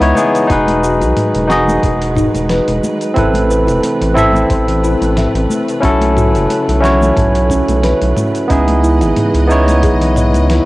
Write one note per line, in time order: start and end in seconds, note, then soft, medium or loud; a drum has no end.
0.00 0.13 C#2 medium
0.00 0.46 C#3 medium
0.00 0.47 E3 medium
0.00 3.12 G#3 medium
0.00 0.15 B3 medium
0.00 0.16 D#4 medium
0.00 0.17 E4 medium
0.00 0.15 B4 loud
0.00 0.45 B4 medium
0.00 0.02 C#5 medium
0.00 0.13 C#5 medium
0.00 0.47 D#5 medium
0.00 closed hi-hat soft
0.15 0.37 B3 medium
0.15 0.37 D#4 medium
0.15 0.38 E4 medium
0.15 0.38 G#4 medium
0.15 high conga medium
0.15 shaker medium
0.35 closed hi-hat soft
0.35 shaker soft
0.47 1.03 E1 medium
0.47 3.14 D#3 medium
0.47 3.14 F#3 medium
0.47 1.45 D#4 medium
0.47 0.80 D#4 loud
0.47 1.46 F#4 medium
0.47 1.46 G#4 medium
0.47 10.65 B4 medium
0.47 kick loud
0.47 closed hi-hat medium
0.47 high bongo soft
0.47 shaker soft
0.52 1.47 B4 loud
0.67 closed hi-hat soft
0.67 high conga medium
0.83 1.13 F#4 medium
0.83 shaker medium
1.01 1.13 B1 loud
1.01 closed hi-hat soft
1.01 high bongo medium
1.01 shaker soft
1.17 closed hi-hat medium
1.17 mid tom medium
1.17 high conga medium
1.17 shaker soft
1.35 1.78 E1 medium
1.35 closed hi-hat soft
1.48 3.12 D#4 medium
1.48 1.80 D#4 medium
1.48 3.12 F#4 medium
1.48 3.13 G#4 medium
1.48 snare medium
1.48 shaker medium
1.52 3.14 D#5 loud
1.67 high conga medium
1.67 low conga medium
1.67 shaker soft
1.83 2.28 E1 medium
1.83 2.03 G#4 medium
1.83 kick loud
1.83 closed hi-hat medium
1.83 shaker soft
2.02 closed hi-hat soft
2.15 2.36 D#4 loud
2.15 kick medium
2.15 mid tom medium
2.15 high bongo medium
2.15 shaker medium
2.34 2.60 E1 medium
2.34 closed hi-hat soft
2.34 high conga medium
2.34 shaker soft
2.49 2.81 B4 loud
2.49 snare medium
2.49 closed hi-hat medium
2.49 shaker soft
2.68 2.80 E1 medium
2.68 closed hi-hat soft
2.84 high conga medium
2.84 shaker medium
3.01 closed hi-hat soft
3.01 shaker soft
3.14 3.70 A1 medium
3.14 5.80 C3 medium
3.14 5.80 E3 medium
3.14 8.45 A3 medium
3.14 4.12 C4 medium
3.14 4.12 E4 medium
3.14 3.46 E4 loud
3.14 4.13 A4 medium
3.14 kick loud
3.14 closed hi-hat medium
3.14 mid tom medium
3.14 high bongo soft
3.14 shaker soft
3.18 4.14 B4 loud
3.34 closed hi-hat soft
3.34 high conga medium
3.50 3.80 B4 medium
3.50 shaker medium
3.67 3.80 E1 loud
3.67 closed hi-hat soft
3.67 high bongo medium
3.67 shaker soft
3.83 closed hi-hat medium
3.83 high conga medium
3.83 shaker soft
4.01 4.44 A1 medium
4.01 closed hi-hat soft
4.14 5.78 C4 medium
4.14 5.79 E4 medium
4.14 4.47 E4 medium
4.14 5.80 A4 medium
4.14 mid tom medium
4.14 shaker medium
4.18 5.80 E5 loud
4.33 high conga medium
4.33 low conga medium
4.33 shaker soft
4.50 4.95 A1 medium
4.50 4.69 C5 medium
4.50 kick loud
4.50 closed hi-hat medium
4.50 shaker soft
4.68 closed hi-hat soft
4.68 low conga medium
4.83 5.03 E4 loud
4.83 shaker medium
5.01 5.27 A1 medium
5.01 closed hi-hat soft
5.01 high conga medium
5.01 shaker soft
5.17 5.49 E5 loud
5.17 snare medium
5.17 closed hi-hat medium
5.17 mid tom medium
5.17 shaker soft
5.34 5.46 A1 medium
5.34 closed hi-hat soft
5.50 high conga medium
5.50 shaker medium
5.68 closed hi-hat soft
5.68 shaker soft
5.80 6.36 B1 loud
5.80 8.47 C#3 medium
5.80 8.47 F#3 medium
5.80 6.78 C#4 medium
5.80 6.13 C#4 loud
5.80 6.79 E4 medium
5.80 6.80 F#4 medium
5.80 kick loud
5.80 closed hi-hat medium
5.80 high bongo soft
5.80 shaker soft
5.85 6.80 A4 loud
6.01 closed hi-hat soft
6.01 high conga medium
6.17 6.47 F#4 medium
6.17 mid tom medium
6.17 shaker medium
6.35 6.47 F#1 loud
6.35 closed hi-hat soft
6.35 high bongo medium
6.35 shaker soft
6.50 closed hi-hat medium
6.50 high conga medium
6.50 shaker soft
6.68 7.11 B1 medium
6.68 closed hi-hat soft
6.80 8.45 C#4 medium
6.80 7.13 C#4 medium
6.80 8.46 E4 medium
6.80 8.46 F#4 medium
6.80 snare medium
6.85 8.47 C#5 loud
6.85 shaker medium
7.01 high conga medium
7.01 low conga medium
7.01 shaker soft
7.16 7.62 B1 medium
7.16 7.36 A4 medium
7.16 kick loud
7.16 closed hi-hat medium
7.16 mid tom medium
7.16 shaker soft
7.35 closed hi-hat soft
7.50 7.69 C#4 loud
7.50 kick medium
7.50 high bongo soft
7.50 shaker medium
7.68 7.93 B1 medium
7.68 closed hi-hat soft
7.68 high conga medium
7.68 shaker soft
7.83 8.15 B4 loud
7.83 snare medium
7.83 closed hi-hat medium
7.83 shaker soft
8.02 8.13 B1 medium
8.02 closed hi-hat soft
8.17 mid tom medium
8.17 high conga medium
8.17 shaker medium
8.35 closed hi-hat soft
8.35 shaker soft
8.48 9.03 C#2 loud
8.48 10.65 C#3 medium
8.48 10.65 E3 medium
8.48 10.65 G#3 medium
8.48 9.45 B3 medium
8.48 8.80 C#4 loud
8.48 9.46 D#4 medium
8.48 9.47 E4 medium
8.48 10.65 D#5 medium
8.48 kick loud
8.48 closed hi-hat medium
8.48 high bongo soft
8.48 shaker soft
8.52 9.47 G#4 loud
8.68 closed hi-hat soft
8.68 high conga medium
8.83 9.13 E4 medium
8.83 shaker medium
9.01 9.13 G#1 loud
9.01 closed hi-hat soft
9.01 high bongo medium
9.01 shaker soft
9.16 closed hi-hat medium
9.16 mid tom medium
9.16 high conga medium
9.16 shaker soft
9.34 9.85 C#2 medium
9.34 closed hi-hat soft
9.47 10.63 B3 medium
9.47 9.80 C#4 medium
9.47 10.64 D#4 medium
9.47 10.65 E4 medium
9.47 shaker medium
9.52 10.65 C#5 loud
9.68 closed hi-hat soft
9.68 high conga medium
9.68 low conga medium
9.68 shaker soft
9.83 10.36 B1 medium
9.83 10.02 G#4 medium
9.83 kick loud
9.83 closed hi-hat medium
9.83 shaker soft
10.01 closed hi-hat soft
10.01 low conga medium
10.16 10.47 C#5 medium
10.16 mid tom medium
10.16 shaker medium
10.34 10.60 C#2 medium
10.34 closed hi-hat soft
10.34 high conga medium
10.34 shaker soft
10.50 10.65 E4 loud
10.50 snare medium
10.50 closed hi-hat medium
10.50 shaker soft